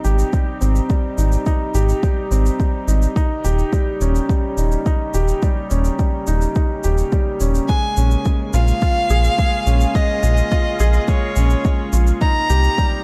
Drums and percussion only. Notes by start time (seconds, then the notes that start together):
0.05 shaker
0.19 shaker
0.33 kick, shaker
0.61 shaker
0.76 shaker
0.90 kick, shaker
1.18 shaker
1.32 shaker
1.46 kick, shaker
1.74 shaker
1.89 shaker
2.03 kick, shaker
2.31 shaker
2.46 shaker
2.60 kick, shaker
2.88 shaker
3.02 shaker
3.16 kick, shaker
3.45 shaker
3.59 shaker
3.73 kick, shaker
4.01 shaker
4.15 shaker
4.29 kick, shaker
4.58 shaker
4.72 shaker
4.86 kick, shaker
5.14 shaker
5.28 shaker
5.42 kick, shaker
5.71 shaker
5.85 shaker
5.99 kick, shaker
6.27 shaker
6.41 shaker
6.55 kick, shaker
6.84 shaker
6.98 shaker
7.12 kick, shaker
7.40 shaker
7.55 shaker
7.69 kick, shaker
7.97 shaker
8.11 shaker
8.25 kick, shaker
8.53 shaker
8.68 shaker
8.82 kick, shaker
9.10 shaker
9.24 shaker
9.38 kick, shaker
9.66 shaker
9.81 shaker
9.95 kick, shaker
10.23 shaker
10.37 shaker
10.51 kick, shaker
10.79 shaker
10.94 shaker
11.08 kick, shaker
11.36 shaker
11.50 shaker
11.65 kick, shaker
11.93 shaker
12.07 shaker
12.21 kick, shaker
12.50 shaker
12.64 shaker
12.78 kick, shaker